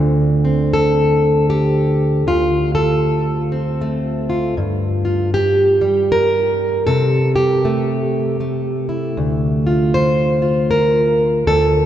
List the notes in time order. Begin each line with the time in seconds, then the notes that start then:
Already playing: D2 D3
0.45 C4
0.74 A4
1.50 G4
2.27 D2 F4
2.75 A4
3.52 C4
3.81 A3
4.30 F4
4.57 G2
5.05 F4
5.34 G4
5.81 G3
6.12 A#4
6.87 C3 A4
7.36 G4
7.65 A3
8.40 A3
8.89 E4
9.17 D2
9.67 F4
9.94 C5
10.42 F4
10.71 A#4
11.47 D2 A4